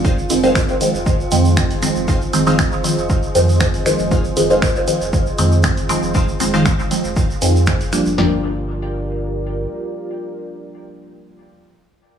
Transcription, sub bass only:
\new Staff \with { instrumentName = "Sub bass" } { \clef bass \time 4/4 \key g \phrygian \tempo 4 = 118 f,,8 f,,8. f,,16 r16 f,,8. f,8. f,,8 f,,16~ | f,,8 f,,8. f,,16 r16 f,,8. f,8. f,,8 f,,16~ | f,,8 f,,8. f,,16 r16 f,,8. f,8. f,,8 f,,16~ | f,,8 f,,8. f,,16 r16 f,,8. f,8. f,,8 f,,16 |
g,,2. r4 | r1 | }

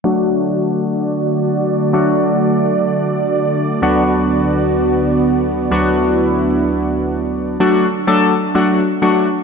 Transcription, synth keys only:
\new Staff \with { instrumentName = "Synth keys" } { \time 4/4 \key d \major \tempo 4 = 127 <fis a d' fis'>1 | <fis a d' fis'>1 | <d, fis b d' fis'>1 | <d, fis b d' fis'>1 |
<fis a d' fis'>8 r8 <fis a d' a'>8 r8 <fis a d' fis'>8 r8 <fis a d' fis'>8 r8 | }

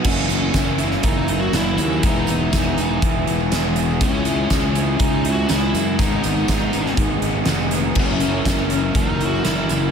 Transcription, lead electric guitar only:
\new Staff \with { instrumentName = "Lead electric guitar" } { \time 4/4 \key fis \mixolydian \tempo 4 = 121 cis'2 \tuplet 3/2 { dis'4 fis'8 } e'4 | dis'2 r2 | cis'2 \tuplet 3/2 { dis'4 fis'8 } e'4 | dis'2 r2 |
cis'2 \tuplet 3/2 { dis'4 fis'8 } e'4 | }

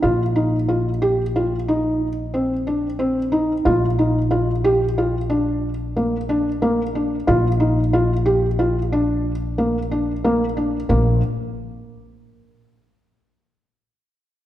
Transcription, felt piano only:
\new Staff \with { instrumentName = "Felt piano" } { \time 11/8 \key bes \major \tempo 4 = 91 f'8 ees'8 f'8 g'8 f'8 ees'4 c'8 d'8 c'8 ees'8 | f'8 ees'8 f'8 g'8 f'8 d'4 bes8 d'8 bes8 d'8 | f'8 ees'8 f'8 g'8 f'8 d'4 bes8 d'8 bes8 d'8 | bes8 r1 r4 | }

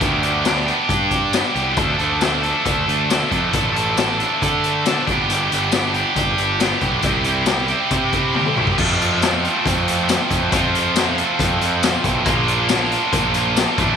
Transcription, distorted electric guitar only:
\new Staff \with { instrumentName = "Distorted electric guitar" } { \time 4/4 \key d \dorian \tempo 4 = 137 <b d' g'>8 <d' g'>8 <b d' g'>8 <d' g'>4. <b d' g'>8 <d' g'>8 | <f a d' a'>8 <a d' a'>8 <f a d' a'>8 <a d' a'>4. <f a d' a'>8 <a d' a'>8 | <f a d' a'>8 <a d' a'>8 <f a d' a'>8 <a d' a'>4. <f a d' a'>8 <b d' g'>8 | <b d' g'>8 <d' g'>8 <b d' g'>8 <d' g'>4. <b d' g'>8 <d' g'>8 |
<g c' e' g'>8 <c' e' g'>8 <g c' e' g'>8 <c' e' g'>4. <g c' e' g'>8 <c' e' g'>8 | \key f \major <f a c' f'>1 | <f a c' f'>1 | <bes d' f'>2.~ <bes d' f'>8 <e a d'>8 | }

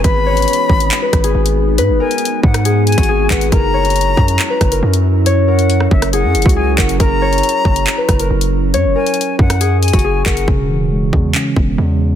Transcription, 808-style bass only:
\new Staff \with { instrumentName = "808-style bass" } { \clef bass \time 4/4 \key fis \mixolydian \tempo 4 = 138 gis,,4 r8 gis,,8 r8 gis,,8 gis,,4 | gis,16 gis,,16 r4 gis,4~ gis,16 gis,,8. gis,,8 | fis,,4. fis,8 r8 fis,,8 fis,4~ | fis,4. fis,,8. fis,16 fis,,16 cis,8. fis,,8 |
fis,,4 r8 fis,,8 r8 fis,,8 fis,,4 | fis,16 fis,,16 r4 fis,4~ fis,16 fis,,8. fis,,8 | e,,4. e,8 r8 e,,8 e,4 | }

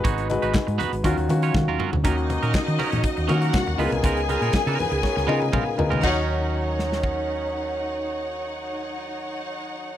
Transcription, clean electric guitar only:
\new Staff \with { instrumentName = "Clean electric guitar" } { \time 4/4 \key ees \minor \tempo 4 = 120 <ces' ees' ges' des''>8 r16 <ces' ees' ges' ces''>16 r8 <ces' ees' ges' ces''>16 r16 <ges des' f' bes'>16 r8 <ges des' f' des''>16 r16 <ges des' f' bes'>16 <ges des' f' bes'>16 r16 | <ges des' ees' bes'>16 r8 <ges des' ees' bes'>16 r8 <ges des' ees' bes'>16 <ges des' ees' des''>16 r8 <ges des' ees' bes'>16 <ges des' ees' bes'>16 r8 <ces' ees' f' ces''>16 r16 | <ces' ees' f' bes'>16 r16 <ces' ees' f' bes'>16 <ces' ees' f' bes'>16 r16 <ces' ees' f' bes'>8 r8. <ces' ees' f' bes'>16 r16 <ces' ees' f' bes'>16 r8 <ces' ees' f' bes'>16 | <ges des' ees' bes'>1~ |
<ges des' ees' bes'>1 | }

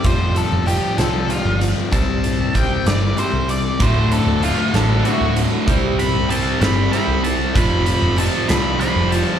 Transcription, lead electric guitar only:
\new Staff \with { instrumentName = "Lead electric guitar" } { \time 6/8 \key c \lydian \tempo 4. = 64 c''8 a'8 g'8 a'8 f'8 r8 | a''4 g''8 d''8 c''8 d''8 | c''8 a'8 f'8 a'8 fis'8 r8 | r8 b''8 a''8 b''8 b''8 a''8 |
b''8 b''8 a''8 b''8 b''8 a''8 | }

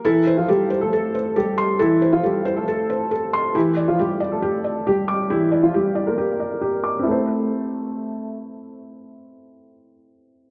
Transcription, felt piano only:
\new Staff \with { instrumentName = "Felt piano" } { \time 4/4 \key a \phrygian \tempo 4 = 137 a'8 c''8 a'8 c''8 a'8 c''8 a'8 c'''8 | a'8 c''8 a'8 c''8 a'8 c''8 a'8 c'''8 | g'8 d''8 g'8 d''8 g'8 d''8 g'8 d'''8 | g'8 d''8 g'8 d''8 g'8 d''8 g'8 d'''8 |
<c' e' a' c''>1~ | <c' e' a' c''>1 | }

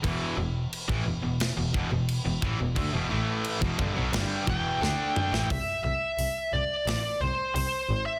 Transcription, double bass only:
\new Staff \with { instrumentName = "Double bass" } { \clef bass \time 4/4 \key e \minor \tempo 4 = 88 e,,8 e,,8 r16 a,,16 e,,16 e,,8 e,,16 e,,16 e,,8 e,,16 a,,16 e,,16 | d,16 e,,16 a,,8. e,,16 g,,16 b,,16 g,,8 e,,8 d,8. a,,16 | c,8 c,8 c,8 c,8 a,,8 c,8 c,8 gis,,8 | }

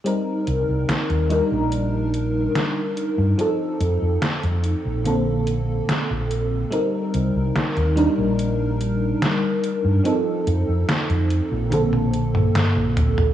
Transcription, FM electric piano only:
\new Staff \with { instrumentName = "FM electric piano" } { \time 4/4 \key ees \lydian \tempo 4 = 72 <g c' ees' bes'>4. <g d' ees' bes'>2~ <g d' ees' bes'>8 | <f c' ees' a'>2 <d bes c' a'>2 | <g c' ees' bes'>4. <g d' ees' bes'>2~ <g d' ees' bes'>8 | <f c' ees' a'>2 <d bes c' a'>2 | }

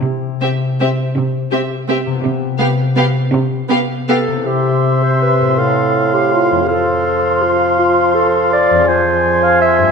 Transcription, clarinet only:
\new Staff \with { instrumentName = "Clarinet" } { \time 3/4 \key c \major \tempo 4 = 162 r2. | r2. | r2. | r2 a'4 |
g'4. c''8 b'4 | a'4. g'8 f'4 | a'2 f'4 | f'4 a'4 d''4 |
c''4. f''8 e''4 | }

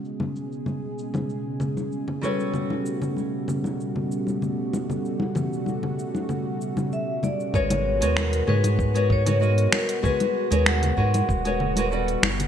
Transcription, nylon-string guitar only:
\new Staff \with { instrumentName = "Nylon-string guitar" } { \time 4/4 \key gis \dorian \tempo 4 = 96 <gis fis' ais' b' cis''>2.~ <gis fis' ais' b' cis''>8 <g fis' a' b' cis''>8~ | <g fis' a' b' cis''>1~ | <g fis' a' b' cis''>2.~ <g fis' a' b' cis''>8 r8 | <gis fis' ais' b' cis''>8. <gis fis' ais' b' cis''>8. <gis fis' gis' b' cis''>8. <gis fis' ais' b' cis''>8 <gis fis' ais' b' cis''>16 <gis fis' ais' b' dis''>4 |
<gis fis' gis' b' cis''>8. <gis fis' ais' b' cis''>8. <gis fis' ais' b' cis''>8. <gis fis' ais' b' cis''>8 <gis fis' ais' b' cis''>16 <g fis' a' b' d''>4 | }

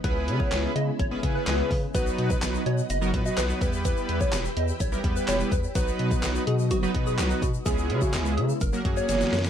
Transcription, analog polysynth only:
\new Staff \with { instrumentName = "Analog polysynth" } { \time 4/4 \key b \major \tempo 4 = 126 <b cis' e' gis' b'>4. r8. <b cis' e' gis' b'>16 <b cis' e' gis' b'>4 r8 | <fis b dis' fis' b'>4. r8. <fis b dis' fis' ais'>16 <fis b dis' fis' b'>4 <g b e' g' b'>8~ | <g b e' g' b'>4 r4 r16 <g b e' g' ais'>16 <g b e' g' b'>4 r8 | <fis b dis' fis' b'>4. r8. <fis b dis' fis' b'>16 <fis b dis' fis' b'>4 r8 |
<gis b cis' e' gis'>4. r8. <fis ais cis' fis' ais'>16 <fis ais cis' fis' gis'>4 r8 | }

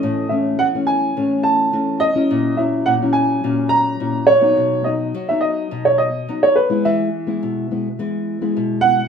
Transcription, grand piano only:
\new Staff \with { instrumentName = "Grand piano" } { \time 4/4 \key e \major \tempo 4 = 106 dis''8 e''8 fis''8 gis''4 a''4 dis''8~ | dis''8 e''8 fis''8 gis''4 ais''4 cis''8~ | cis''8 dis''8. e''16 dis''8. cis''16 dis''8. cis''16 b'8 | e''2. r8 fis''8 | }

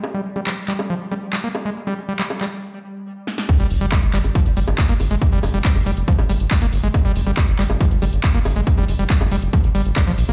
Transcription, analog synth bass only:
\new Staff \with { instrumentName = "Analog synth bass" } { \clef bass \time 4/4 \key f \dorian \tempo 4 = 139 r1 | r1 | r16 g,,16 f,,16 g,,16 r16 g,,16 g,,16 g,,16 r16 g,,16 g,,16 g,,16 r16 g,,16 g,,16 g,,16 | r16 f,,16 f,,16 f,,16 r16 f,,16 f,,16 f,,16 r16 g,,16 g,,16 g,,16 r16 g,,16 g,,16 g,,16 |
r16 g,,16 f,,16 g,,16 r16 g,,16 g,,16 g,,16 r16 g,,16 g,,16 g,,16 r16 g,,16 g,,16 g,,16 | r16 f,,16 f,,16 f,,16 r16 f,,16 f,,16 f,,16 r16 g,,16 g,,16 g,,16 r16 bes,,16 bes,,16 bes,,16 | }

